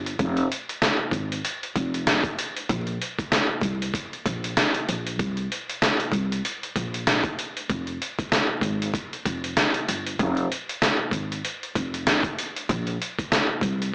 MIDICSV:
0, 0, Header, 1, 3, 480
1, 0, Start_track
1, 0, Key_signature, -4, "minor"
1, 0, Tempo, 625000
1, 147, Time_signature, 4, 2, 24, 8
1, 10711, End_track
2, 0, Start_track
2, 0, Title_t, "Upright bass"
2, 0, Program_c, 0, 32
2, 0, Note_on_c, 0, 31, 94
2, 114, Note_off_c, 0, 31, 0
2, 151, Note_on_c, 0, 29, 111
2, 353, Note_off_c, 0, 29, 0
2, 858, Note_on_c, 0, 32, 94
2, 1065, Note_off_c, 0, 32, 0
2, 1350, Note_on_c, 0, 29, 98
2, 1670, Note_off_c, 0, 29, 0
2, 2071, Note_on_c, 0, 34, 113
2, 2273, Note_off_c, 0, 34, 0
2, 2778, Note_on_c, 0, 36, 89
2, 2986, Note_off_c, 0, 36, 0
2, 3271, Note_on_c, 0, 34, 98
2, 3473, Note_off_c, 0, 34, 0
2, 3753, Note_on_c, 0, 34, 92
2, 3992, Note_off_c, 0, 34, 0
2, 3992, Note_on_c, 0, 36, 101
2, 4193, Note_off_c, 0, 36, 0
2, 4699, Note_on_c, 0, 36, 97
2, 4906, Note_off_c, 0, 36, 0
2, 5191, Note_on_c, 0, 34, 93
2, 5510, Note_off_c, 0, 34, 0
2, 5911, Note_on_c, 0, 29, 106
2, 6113, Note_off_c, 0, 29, 0
2, 6619, Note_on_c, 0, 32, 101
2, 6826, Note_off_c, 0, 32, 0
2, 7110, Note_on_c, 0, 29, 97
2, 7312, Note_off_c, 0, 29, 0
2, 7592, Note_on_c, 0, 31, 93
2, 7794, Note_off_c, 0, 31, 0
2, 7831, Note_on_c, 0, 29, 115
2, 8033, Note_off_c, 0, 29, 0
2, 8538, Note_on_c, 0, 32, 97
2, 8745, Note_off_c, 0, 32, 0
2, 9030, Note_on_c, 0, 29, 96
2, 9350, Note_off_c, 0, 29, 0
2, 9750, Note_on_c, 0, 34, 111
2, 9953, Note_off_c, 0, 34, 0
2, 10457, Note_on_c, 0, 36, 93
2, 10665, Note_off_c, 0, 36, 0
2, 10711, End_track
3, 0, Start_track
3, 0, Title_t, "Drums"
3, 50, Note_on_c, 9, 42, 49
3, 126, Note_off_c, 9, 42, 0
3, 148, Note_on_c, 9, 36, 126
3, 149, Note_on_c, 9, 42, 85
3, 225, Note_off_c, 9, 36, 0
3, 226, Note_off_c, 9, 42, 0
3, 283, Note_on_c, 9, 42, 39
3, 360, Note_off_c, 9, 42, 0
3, 397, Note_on_c, 9, 42, 75
3, 474, Note_off_c, 9, 42, 0
3, 532, Note_on_c, 9, 42, 58
3, 609, Note_off_c, 9, 42, 0
3, 628, Note_on_c, 9, 38, 118
3, 638, Note_on_c, 9, 42, 101
3, 705, Note_off_c, 9, 38, 0
3, 715, Note_off_c, 9, 42, 0
3, 855, Note_on_c, 9, 36, 96
3, 868, Note_on_c, 9, 42, 71
3, 932, Note_off_c, 9, 36, 0
3, 945, Note_off_c, 9, 42, 0
3, 1013, Note_on_c, 9, 42, 53
3, 1090, Note_off_c, 9, 42, 0
3, 1111, Note_on_c, 9, 42, 85
3, 1187, Note_off_c, 9, 42, 0
3, 1253, Note_on_c, 9, 42, 38
3, 1329, Note_off_c, 9, 42, 0
3, 1348, Note_on_c, 9, 36, 97
3, 1350, Note_on_c, 9, 42, 85
3, 1424, Note_off_c, 9, 36, 0
3, 1426, Note_off_c, 9, 42, 0
3, 1490, Note_on_c, 9, 42, 57
3, 1567, Note_off_c, 9, 42, 0
3, 1588, Note_on_c, 9, 42, 104
3, 1589, Note_on_c, 9, 38, 115
3, 1665, Note_off_c, 9, 38, 0
3, 1665, Note_off_c, 9, 42, 0
3, 1716, Note_on_c, 9, 36, 102
3, 1722, Note_on_c, 9, 42, 38
3, 1792, Note_off_c, 9, 36, 0
3, 1799, Note_off_c, 9, 42, 0
3, 1832, Note_on_c, 9, 42, 91
3, 1908, Note_off_c, 9, 42, 0
3, 1969, Note_on_c, 9, 42, 50
3, 2046, Note_off_c, 9, 42, 0
3, 2068, Note_on_c, 9, 36, 119
3, 2069, Note_on_c, 9, 42, 84
3, 2145, Note_off_c, 9, 36, 0
3, 2145, Note_off_c, 9, 42, 0
3, 2202, Note_on_c, 9, 42, 38
3, 2279, Note_off_c, 9, 42, 0
3, 2316, Note_on_c, 9, 42, 75
3, 2393, Note_off_c, 9, 42, 0
3, 2447, Note_on_c, 9, 36, 100
3, 2453, Note_on_c, 9, 42, 57
3, 2524, Note_off_c, 9, 36, 0
3, 2530, Note_off_c, 9, 42, 0
3, 2548, Note_on_c, 9, 38, 120
3, 2558, Note_on_c, 9, 42, 97
3, 2625, Note_off_c, 9, 38, 0
3, 2635, Note_off_c, 9, 42, 0
3, 2776, Note_on_c, 9, 36, 102
3, 2788, Note_on_c, 9, 42, 71
3, 2853, Note_off_c, 9, 36, 0
3, 2865, Note_off_c, 9, 42, 0
3, 2934, Note_on_c, 9, 42, 54
3, 3011, Note_off_c, 9, 42, 0
3, 3024, Note_on_c, 9, 36, 94
3, 3032, Note_on_c, 9, 42, 84
3, 3100, Note_off_c, 9, 36, 0
3, 3109, Note_off_c, 9, 42, 0
3, 3173, Note_on_c, 9, 42, 36
3, 3250, Note_off_c, 9, 42, 0
3, 3269, Note_on_c, 9, 36, 99
3, 3271, Note_on_c, 9, 42, 87
3, 3345, Note_off_c, 9, 36, 0
3, 3348, Note_off_c, 9, 42, 0
3, 3411, Note_on_c, 9, 42, 59
3, 3488, Note_off_c, 9, 42, 0
3, 3509, Note_on_c, 9, 42, 104
3, 3510, Note_on_c, 9, 38, 122
3, 3586, Note_off_c, 9, 42, 0
3, 3587, Note_off_c, 9, 38, 0
3, 3644, Note_on_c, 9, 42, 39
3, 3721, Note_off_c, 9, 42, 0
3, 3753, Note_on_c, 9, 42, 87
3, 3830, Note_off_c, 9, 42, 0
3, 3891, Note_on_c, 9, 42, 50
3, 3968, Note_off_c, 9, 42, 0
3, 3990, Note_on_c, 9, 36, 126
3, 3991, Note_on_c, 9, 42, 80
3, 4066, Note_off_c, 9, 36, 0
3, 4068, Note_off_c, 9, 42, 0
3, 4125, Note_on_c, 9, 42, 39
3, 4202, Note_off_c, 9, 42, 0
3, 4238, Note_on_c, 9, 42, 75
3, 4315, Note_off_c, 9, 42, 0
3, 4374, Note_on_c, 9, 42, 56
3, 4451, Note_off_c, 9, 42, 0
3, 4470, Note_on_c, 9, 38, 118
3, 4480, Note_on_c, 9, 42, 99
3, 4547, Note_off_c, 9, 38, 0
3, 4557, Note_off_c, 9, 42, 0
3, 4607, Note_on_c, 9, 42, 37
3, 4683, Note_off_c, 9, 42, 0
3, 4697, Note_on_c, 9, 36, 101
3, 4709, Note_on_c, 9, 42, 72
3, 4773, Note_off_c, 9, 36, 0
3, 4786, Note_off_c, 9, 42, 0
3, 4854, Note_on_c, 9, 42, 55
3, 4931, Note_off_c, 9, 42, 0
3, 4952, Note_on_c, 9, 42, 85
3, 5029, Note_off_c, 9, 42, 0
3, 5093, Note_on_c, 9, 42, 38
3, 5170, Note_off_c, 9, 42, 0
3, 5188, Note_on_c, 9, 36, 98
3, 5190, Note_on_c, 9, 42, 84
3, 5265, Note_off_c, 9, 36, 0
3, 5267, Note_off_c, 9, 42, 0
3, 5331, Note_on_c, 9, 42, 56
3, 5407, Note_off_c, 9, 42, 0
3, 5429, Note_on_c, 9, 42, 100
3, 5430, Note_on_c, 9, 38, 118
3, 5506, Note_off_c, 9, 38, 0
3, 5506, Note_off_c, 9, 42, 0
3, 5556, Note_on_c, 9, 36, 100
3, 5563, Note_on_c, 9, 42, 37
3, 5633, Note_off_c, 9, 36, 0
3, 5640, Note_off_c, 9, 42, 0
3, 5672, Note_on_c, 9, 42, 90
3, 5749, Note_off_c, 9, 42, 0
3, 5811, Note_on_c, 9, 42, 51
3, 5888, Note_off_c, 9, 42, 0
3, 5909, Note_on_c, 9, 36, 120
3, 5910, Note_on_c, 9, 42, 85
3, 5986, Note_off_c, 9, 36, 0
3, 5987, Note_off_c, 9, 42, 0
3, 6044, Note_on_c, 9, 42, 39
3, 6121, Note_off_c, 9, 42, 0
3, 6158, Note_on_c, 9, 42, 76
3, 6234, Note_off_c, 9, 42, 0
3, 6287, Note_on_c, 9, 36, 98
3, 6293, Note_on_c, 9, 42, 56
3, 6364, Note_off_c, 9, 36, 0
3, 6370, Note_off_c, 9, 42, 0
3, 6389, Note_on_c, 9, 38, 125
3, 6399, Note_on_c, 9, 42, 100
3, 6466, Note_off_c, 9, 38, 0
3, 6476, Note_off_c, 9, 42, 0
3, 6616, Note_on_c, 9, 36, 98
3, 6628, Note_on_c, 9, 42, 72
3, 6693, Note_off_c, 9, 36, 0
3, 6705, Note_off_c, 9, 42, 0
3, 6773, Note_on_c, 9, 42, 55
3, 6850, Note_off_c, 9, 42, 0
3, 6863, Note_on_c, 9, 36, 100
3, 6871, Note_on_c, 9, 42, 82
3, 6940, Note_off_c, 9, 36, 0
3, 6948, Note_off_c, 9, 42, 0
3, 7012, Note_on_c, 9, 42, 38
3, 7089, Note_off_c, 9, 42, 0
3, 7108, Note_on_c, 9, 36, 100
3, 7109, Note_on_c, 9, 42, 86
3, 7184, Note_off_c, 9, 36, 0
3, 7186, Note_off_c, 9, 42, 0
3, 7250, Note_on_c, 9, 42, 55
3, 7326, Note_off_c, 9, 42, 0
3, 7348, Note_on_c, 9, 42, 97
3, 7349, Note_on_c, 9, 38, 124
3, 7425, Note_off_c, 9, 38, 0
3, 7425, Note_off_c, 9, 42, 0
3, 7483, Note_on_c, 9, 42, 40
3, 7559, Note_off_c, 9, 42, 0
3, 7592, Note_on_c, 9, 42, 89
3, 7669, Note_off_c, 9, 42, 0
3, 7730, Note_on_c, 9, 42, 50
3, 7807, Note_off_c, 9, 42, 0
3, 7829, Note_on_c, 9, 36, 123
3, 7830, Note_on_c, 9, 42, 85
3, 7906, Note_off_c, 9, 36, 0
3, 7907, Note_off_c, 9, 42, 0
3, 7963, Note_on_c, 9, 42, 37
3, 8040, Note_off_c, 9, 42, 0
3, 8077, Note_on_c, 9, 42, 74
3, 8154, Note_off_c, 9, 42, 0
3, 8213, Note_on_c, 9, 42, 57
3, 8290, Note_off_c, 9, 42, 0
3, 8309, Note_on_c, 9, 38, 118
3, 8319, Note_on_c, 9, 42, 99
3, 8386, Note_off_c, 9, 38, 0
3, 8396, Note_off_c, 9, 42, 0
3, 8535, Note_on_c, 9, 36, 96
3, 8547, Note_on_c, 9, 42, 70
3, 8612, Note_off_c, 9, 36, 0
3, 8624, Note_off_c, 9, 42, 0
3, 8693, Note_on_c, 9, 42, 53
3, 8770, Note_off_c, 9, 42, 0
3, 8791, Note_on_c, 9, 42, 84
3, 8867, Note_off_c, 9, 42, 0
3, 8933, Note_on_c, 9, 42, 37
3, 9009, Note_off_c, 9, 42, 0
3, 9027, Note_on_c, 9, 36, 96
3, 9030, Note_on_c, 9, 42, 83
3, 9104, Note_off_c, 9, 36, 0
3, 9107, Note_off_c, 9, 42, 0
3, 9170, Note_on_c, 9, 42, 55
3, 9247, Note_off_c, 9, 42, 0
3, 9268, Note_on_c, 9, 42, 98
3, 9269, Note_on_c, 9, 38, 117
3, 9345, Note_off_c, 9, 42, 0
3, 9346, Note_off_c, 9, 38, 0
3, 9395, Note_on_c, 9, 36, 103
3, 9403, Note_on_c, 9, 42, 39
3, 9472, Note_off_c, 9, 36, 0
3, 9479, Note_off_c, 9, 42, 0
3, 9512, Note_on_c, 9, 42, 91
3, 9589, Note_off_c, 9, 42, 0
3, 9650, Note_on_c, 9, 42, 52
3, 9726, Note_off_c, 9, 42, 0
3, 9748, Note_on_c, 9, 36, 118
3, 9749, Note_on_c, 9, 42, 85
3, 9825, Note_off_c, 9, 36, 0
3, 9826, Note_off_c, 9, 42, 0
3, 9882, Note_on_c, 9, 42, 38
3, 9959, Note_off_c, 9, 42, 0
3, 9996, Note_on_c, 9, 42, 73
3, 10073, Note_off_c, 9, 42, 0
3, 10126, Note_on_c, 9, 36, 99
3, 10132, Note_on_c, 9, 42, 58
3, 10203, Note_off_c, 9, 36, 0
3, 10208, Note_off_c, 9, 42, 0
3, 10228, Note_on_c, 9, 38, 118
3, 10238, Note_on_c, 9, 42, 99
3, 10305, Note_off_c, 9, 38, 0
3, 10315, Note_off_c, 9, 42, 0
3, 10455, Note_on_c, 9, 36, 103
3, 10467, Note_on_c, 9, 42, 72
3, 10532, Note_off_c, 9, 36, 0
3, 10543, Note_off_c, 9, 42, 0
3, 10612, Note_on_c, 9, 42, 55
3, 10689, Note_off_c, 9, 42, 0
3, 10711, End_track
0, 0, End_of_file